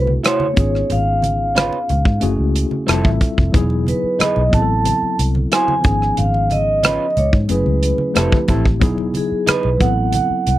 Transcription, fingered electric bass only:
0.00 0.17 C2 medium
0.57 0.82 G#1 medium
0.91 1.69 G#1 medium
1.90 2.02 C#2 medium
2.06 2.18 G#2 medium
2.23 2.35 F#1 medium
2.39 2.64 C#2 medium
2.89 3.01 F1 medium
3.05 3.17 A1 medium
3.38 3.50 F1 medium
3.54 3.92 E1 loud
4.04 muted fingered electric bass stroke soft
4.20 muted fingered electric bass stroke soft
4.37 4.49 B1 medium
4.53 4.91 A1 medium
5.03 muted fingered electric bass stroke soft
5.19 5.44 C2 medium
5.85 6.10 G#1 medium
6.19 6.97 G#1 medium
7.17 7.29 C#2 medium
7.33 7.46 G#2 medium
7.50 7.62 F#1 medium
7.66 7.91 C#2 medium
8.16 8.28 F1 medium
8.49 8.82 A1 medium
8.82 9.19 E1 loud
9.32 muted fingered electric bass stroke soft
9.48 muted fingered electric bass stroke soft
9.65 9.77 B1 medium
9.81 10.18 A1 medium
10.31 muted fingered electric bass stroke soft
10.47 10.59 C2 medium

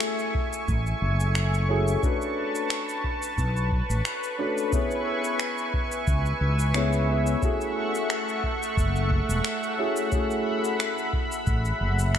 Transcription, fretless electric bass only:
0.68 0.92 A1 medium
1.02 1.95 F#1 medium
3.38 3.81 B1 medium
3.90 4.00 A1 medium
6.07 6.32 C#2 medium
6.41 7.35 C#2 medium
8.77 9.20 F#1 medium
9.29 9.40 E1 medium
11.47 11.71 A1 medium
11.81 12.19 F#1 medium

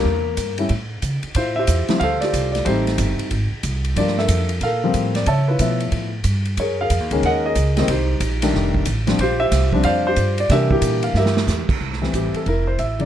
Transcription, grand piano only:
0.00 0.54 A#3 medium
0.58 0.69 G3 medium
0.58 0.69 A3 medium
0.58 0.69 C#4 medium
0.58 0.70 E4 medium
1.36 1.88 E4 medium
1.36 1.98 F4 medium
1.36 1.55 C5 medium
1.56 2.19 G4 medium
1.56 2.02 C5 medium
1.56 1.97 E5 medium
1.89 2.00 F3 medium
1.89 2.00 G3 medium
1.89 2.00 C4 medium
1.89 2.00 E4 medium
2.00 2.63 A4 medium
2.00 2.63 C5 medium
2.00 2.20 F5 loud
2.21 2.65 F4 medium
2.21 2.64 G4 medium
2.21 2.51 D5 medium
2.52 2.64 D5 medium
2.65 3.31 G3 medium
2.65 3.32 A3 medium
2.65 3.32 C4 medium
2.65 3.32 D#4 medium
2.65 3.29 G4 medium
2.65 2.96 C5 medium
3.97 4.46 F3 medium
3.97 4.46 G3 soft
3.97 4.47 A#3 soft
3.97 4.47 D4 medium
3.97 4.59 F4 medium
3.97 4.18 A#4 medium
3.97 4.17 D5 medium
4.19 4.62 A4 medium
4.19 4.63 A#4 medium
4.19 4.49 E5 medium
4.63 5.24 A4 medium
4.63 5.24 A#4 medium
4.63 5.13 F5 medium
4.84 5.25 F3 medium
4.84 5.25 G3 medium
4.84 5.26 A#3 medium
4.84 5.26 C4 medium
5.16 5.28 D5 medium
5.27 5.89 C#5 medium
5.27 5.60 E5 medium
5.27 5.49 A5 loud
5.48 6.11 E4 medium
5.48 6.10 F4 medium
5.48 5.79 B4 medium
5.61 6.10 F3 soft
5.61 6.10 A3 medium
5.61 6.10 B3 medium
5.61 6.10 E5 medium
6.60 6.80 G#4 medium
6.60 6.80 A#4 medium
6.60 6.80 C#5 medium
6.81 7.42 G#4 medium
6.81 7.25 A#4 medium
6.81 7.26 F5 medium
7.11 7.53 D#3 medium
7.11 7.54 G#3 medium
7.11 7.54 A#3 medium
7.11 7.54 C#4 medium
7.26 7.45 A#4 medium
7.26 7.44 D#5 medium
7.26 7.44 F#5 loud
7.46 7.87 G#4 medium
7.46 7.87 A#4 medium
7.46 7.78 D#5 medium
7.76 7.87 D#3 medium
7.76 7.87 G3 medium
7.76 7.88 A#3 medium
7.76 7.88 C4 medium
7.76 7.89 D#5 medium
7.90 8.51 D#4 medium
7.90 8.51 G4 medium
7.90 8.20 C5 medium
8.43 8.84 D#3 medium
8.43 8.84 G3 medium
8.43 8.85 A3 medium
8.43 8.85 D4 medium
9.07 9.18 F3 medium
9.07 9.18 G3 medium
9.07 9.18 C4 medium
9.07 9.19 D4 medium
9.21 9.82 F4 medium
9.21 9.40 G4 medium
9.21 9.40 C5 medium
9.40 10.02 G4 medium
9.40 9.85 C5 medium
9.40 9.81 E5 loud
9.73 10.15 F3 medium
9.73 10.15 G3 medium
9.73 10.16 C4 medium
9.73 10.16 D4 medium
9.85 10.05 C5 medium
9.85 10.39 D5 medium
9.85 10.06 F5 loud
10.07 10.48 F4 medium
10.07 10.48 G4 medium
10.07 10.36 C5 loud
10.40 10.51 D5 loud
10.50 11.41 E3 medium
10.50 11.41 G3 medium
10.50 10.72 A#3 medium
10.50 11.42 D4 medium
10.50 10.71 G4 medium
10.50 11.12 A#4 medium
10.50 10.72 E5 loud
10.72 11.33 A#3 medium
10.72 11.34 E4 medium
10.72 11.02 G4 loud
11.04 11.14 F5 medium
11.17 11.78 G4 medium
11.17 11.78 A#4 medium
11.17 11.66 E5 medium
12.02 12.44 E3 medium
12.02 12.44 G3 soft
12.02 12.44 A3 medium
12.02 12.44 C4 medium
12.15 12.36 G4 medium
12.36 12.46 A4 medium
12.48 13.05 E4 medium
12.48 12.68 A#4 medium
12.67 12.78 C5 medium
12.79 12.98 E5 medium
12.99 13.05 C#3 soft
12.99 13.05 F3 soft
12.99 13.05 G#3 soft
12.99 13.05 D#4 medium
12.99 13.05 D5 medium

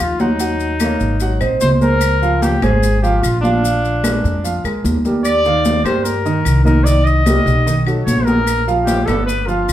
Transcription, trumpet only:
0.00 0.21 F4 medium
0.20 1.41 D#4 medium
1.61 1.70 C5 medium
1.82 2.44 A#4 loud
2.42 2.64 G4 medium
2.63 3.01 G#4 medium
3.02 3.23 G4 medium
3.22 3.40 F4 medium
3.41 4.59 D4 medium
5.24 5.81 D5 loud
5.85 6.05 C5 medium
6.04 6.64 A#4 medium
6.65 6.85 A#4 medium
6.84 7.06 D5 loud
7.05 7.86 D#5 loud
8.04 8.26 C#5 medium
8.25 8.66 A#4 loud
8.86 9.07 G4 medium
9.06 9.25 A4 medium
9.26 9.48 B4 medium
9.46 9.73 F4 medium

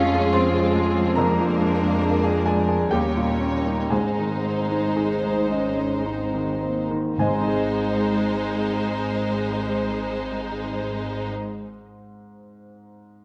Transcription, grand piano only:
0.00 1.14 F2 medium
0.00 0.56 F3 soft
0.00 0.76 G#3 soft
0.00 0.35 F4 soft
0.00 0.15 G#4 soft
0.00 0.28 C#5 medium
0.00 0.25 F5 soft
0.00 0.28 C#6 medium
0.15 0.46 G#4 soft
0.33 0.67 F4 soft
0.33 1.12 C5 medium
0.33 1.12 C6 medium
0.56 0.88 F3 soft
0.76 1.08 G#3 soft
0.98 1.17 F3 soft
1.15 2.88 F2 soft
1.15 2.01 A#4 soft
1.15 2.41 A#5 medium
1.40 1.72 F3 soft
1.62 1.94 G#3 soft
1.82 2.15 D4 soft
2.03 2.37 A#4 soft
2.24 2.45 G#4 soft
2.45 2.67 G#4 soft
2.45 2.82 D5 soft
2.45 2.88 G#5 soft
2.69 2.91 G#4 soft
2.91 3.88 D#2 soft
2.91 3.87 G4 soft
2.91 3.86 G5 medium
3.17 3.55 A#2 soft
3.40 3.80 C#4 soft
3.66 3.91 D#4 soft
3.90 7.14 G#2 soft
3.90 4.95 G#4 soft
3.90 6.56 G#5 soft
4.19 4.59 D#3 soft
4.45 4.86 C4 soft
4.70 5.12 D#4 soft
4.96 5.39 G#4 soft
5.23 5.66 C5 soft
5.51 5.94 D#5 soft
5.78 6.21 C5 soft
6.06 6.50 D#4 soft
6.34 6.79 D#3 soft
6.62 7.07 C4 soft
6.91 7.18 D#3 soft
7.19 11.41 G#2 soft
7.19 11.41 C5 soft
7.19 7.54 D#5 soft
7.19 11.40 G#5 soft
7.27 11.47 G#3 soft
7.34 11.55 C4 soft
7.42 11.62 D#4 soft
7.48 11.68 G#4 soft
7.55 11.76 D#5 soft

